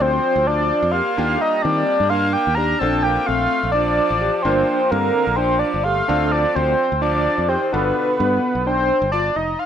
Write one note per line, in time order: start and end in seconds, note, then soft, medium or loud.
0.00 0.18 D2 medium
0.00 0.46 F3 medium
0.00 1.14 C4 medium
0.00 0.34 C4 medium
0.00 1.15 D4 medium
0.00 1.15 F4 medium
0.00 1.15 A4 medium
0.00 0.48 C5 loud
0.00 0.48 G5 loud
0.36 0.71 D2 medium
0.46 0.95 F3 medium
0.46 0.81 D4 medium
0.46 0.93 D5 loud
0.46 0.93 A5 loud
0.82 1.00 F2 medium
0.91 1.41 A#3 medium
0.91 1.11 G4 medium
0.91 1.43 F5 medium
0.91 1.43 C6 medium
1.17 1.36 D#2 medium
1.17 2.78 A#3 medium
1.17 2.78 D4 medium
1.17 1.51 D4 medium
1.17 2.79 F4 medium
1.17 2.79 G4 medium
1.39 1.64 G3 medium
1.39 1.63 D#5 loud
1.39 1.63 A#5 loud
1.62 1.82 D#3 medium
1.62 2.12 G3 medium
1.62 1.97 C4 medium
1.62 2.11 D5 loud
1.62 2.11 A5 loud
2.00 2.35 G2 medium
2.09 2.33 A#3 medium
2.09 2.45 D4 medium
2.09 2.34 F5 loud
2.09 2.34 C6 loud
2.33 2.59 A#3 medium
2.33 2.56 G5 loud
2.33 2.56 D6 loud
2.47 2.73 D#2 medium
2.55 2.81 D4 medium
2.55 2.74 G4 medium
2.55 2.80 A#5 medium
2.55 2.80 F6 medium
2.79 3.17 A#1 loud
2.79 3.05 C4 medium
2.79 4.42 C4 medium
2.79 3.14 D4 medium
2.79 4.42 D4 medium
2.79 4.43 F4 medium
2.79 4.43 A4 medium
2.79 3.04 A5 loud
2.79 3.04 E6 loud
3.03 3.30 A#3 medium
3.03 3.28 G5 loud
3.03 3.28 D6 loud
3.26 3.46 A#1 medium
3.26 3.74 A3 medium
3.26 3.61 C4 medium
3.26 3.71 F5 loud
3.26 3.71 C6 loud
3.63 3.99 A#1 medium
3.72 4.44 F3 medium
3.72 4.08 D4 medium
3.72 4.44 D5 loud
3.72 4.44 A5 loud
4.10 4.28 A1 medium
4.21 4.38 G4 medium
4.42 4.63 G1 medium
4.42 4.93 F3 medium
4.42 6.06 A#3 medium
4.42 4.79 D4 loud
4.42 6.06 D4 medium
4.42 6.06 F4 medium
4.42 6.06 A#4 medium
4.42 4.92 C5 medium
4.42 4.92 G5 medium
4.91 5.10 G2 loud
4.91 5.40 D3 medium
4.91 5.25 C4 medium
4.91 5.37 A#4 loud
4.91 5.37 F5 loud
5.27 5.62 A#1 medium
5.36 5.62 F3 medium
5.36 5.72 D4 medium
5.36 5.60 C5 loud
5.36 5.60 G5 loud
5.59 5.87 F3 medium
5.59 5.85 D5 medium
5.59 5.85 A5 medium
5.74 6.00 G1 medium
5.83 6.33 A3 medium
5.83 6.02 G4 medium
5.83 6.33 F5 medium
5.83 6.33 C6 medium
6.08 6.44 D2 loud
6.08 7.69 C4 medium
6.08 6.42 D4 loud
6.08 7.69 D4 medium
6.08 7.70 F4 medium
6.08 7.70 A4 medium
6.31 6.55 F3 medium
6.31 6.57 D5 loud
6.31 6.57 A5 loud
6.55 6.74 D2 loud
6.55 6.87 F3 medium
6.55 6.88 C4 medium
6.55 7.01 C5 medium
6.55 7.01 G5 medium
6.92 7.27 D2 medium
7.01 7.51 F3 medium
7.01 7.35 D4 medium
7.01 7.50 D5 medium
7.01 7.50 A5 medium
7.38 7.56 F2 medium
7.49 7.75 D#3 medium
7.49 7.66 G4 medium
7.49 7.74 C5 medium
7.49 7.74 G5 medium
7.72 7.91 G1 loud
7.72 9.33 B2 medium
7.72 8.90 D3 medium
7.72 8.06 D4 medium
7.72 9.34 D4 medium
7.72 9.34 F4 medium
7.72 9.34 A4 medium
7.72 8.66 B4 medium
7.72 8.66 F#5 medium
8.19 8.38 G2 loud
8.19 8.53 B3 medium
8.55 8.90 B1 medium
8.67 9.00 D4 medium
8.67 9.10 C5 medium
8.67 9.10 G5 medium
9.02 9.28 G1 medium
9.12 9.30 F4 medium
9.12 9.37 D5 medium
9.12 9.37 A5 medium
9.36 9.54 F1 medium
9.36 9.66 D#4 medium
9.36 9.61 D#5 medium
9.36 9.61 A#5 medium
9.59 9.66 F5 medium
9.59 9.66 C6 medium